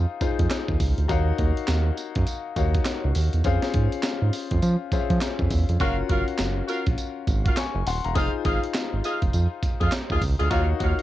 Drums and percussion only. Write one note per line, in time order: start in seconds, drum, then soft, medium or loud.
0.21 kick loud
0.21 closed hi-hat medium
0.21 tambourine medium
0.39 kick medium
0.39 closed hi-hat medium
0.50 snare loud
0.50 clap medium
0.50 closed hi-hat medium
0.50 tambourine medium
0.68 kick medium
0.80 kick medium
0.80 open hi-hat medium
0.80 tambourine medium
0.98 closed hi-hat soft
1.09 kick loud
1.09 closed hi-hat medium
1.09 tambourine medium
1.38 kick loud
1.38 closed hi-hat medium
1.57 closed hi-hat medium
1.67 snare loud
1.67 clap loud
1.67 closed hi-hat medium
1.67 tambourine medium
1.97 closed hi-hat medium
1.97 tambourine medium
2.15 kick loud
2.15 closed hi-hat medium
2.27 closed hi-hat medium
2.27 tambourine medium
2.56 kick loud
2.56 closed hi-hat medium
2.56 tambourine medium
2.74 kick loud
2.74 closed hi-hat medium
2.85 snare loud
2.85 clap loud
2.85 closed hi-hat medium
2.85 tambourine medium
3.15 open hi-hat medium
3.15 tambourine medium
3.33 closed hi-hat medium
3.44 kick loud
3.44 closed hi-hat medium
3.44 tambourine medium
3.62 snare medium
3.74 kick loud
3.74 closed hi-hat medium
3.92 closed hi-hat medium
4.03 snare loud
4.03 clap loud
4.03 closed hi-hat medium
4.03 tambourine medium
4.33 open hi-hat medium
4.33 tambourine medium
4.51 kick loud
4.51 closed hi-hat medium
4.62 closed hi-hat medium
4.62 tambourine medium
4.92 kick loud
4.92 closed hi-hat medium
4.92 tambourine medium
5.10 kick loud
5.10 closed hi-hat medium
5.21 snare loud
5.21 clap loud
5.21 closed hi-hat medium
5.21 tambourine medium
5.39 kick medium
5.51 kick loud
5.51 open hi-hat medium
5.51 tambourine medium
5.69 closed hi-hat medium
5.80 kick loud
5.80 closed hi-hat medium
5.80 tambourine medium
6.09 kick loud
6.09 closed hi-hat medium
6.28 closed hi-hat medium
6.38 snare loud
6.38 clap medium
6.38 closed hi-hat medium
6.38 tambourine medium
6.68 closed hi-hat medium
6.68 tambourine medium
6.86 kick loud
6.86 closed hi-hat medium
6.98 closed hi-hat medium
6.98 tambourine medium
7.27 kick loud
7.27 closed hi-hat medium
7.27 tambourine medium
7.46 kick loud
7.46 closed hi-hat medium
7.57 snare loud
7.57 clap loud
7.57 closed hi-hat medium
7.57 tambourine medium
7.87 open hi-hat medium
7.87 tambourine medium
8.05 closed hi-hat medium
8.16 kick loud
8.16 closed hi-hat medium
8.16 tambourine medium
8.45 kick loud
8.45 closed hi-hat medium
8.64 closed hi-hat medium
8.74 snare loud
8.74 clap loud
8.74 closed hi-hat medium
8.74 tambourine medium
9.04 closed hi-hat medium
9.04 tambourine medium
9.22 kick loud
9.22 closed hi-hat medium
9.33 closed hi-hat medium
9.33 tambourine medium
9.63 kick loud
9.63 closed hi-hat medium
9.63 tambourine medium
9.81 kick medium
9.81 closed hi-hat medium
9.92 snare loud
9.92 clap medium
9.92 closed hi-hat medium
9.92 tambourine medium
10.10 kick medium
10.22 kick medium
10.22 open hi-hat medium
10.22 tambourine medium
10.40 closed hi-hat medium
10.51 kick loud
10.51 closed hi-hat medium
10.51 tambourine medium
10.80 kick loud
10.80 closed hi-hat medium
10.99 closed hi-hat medium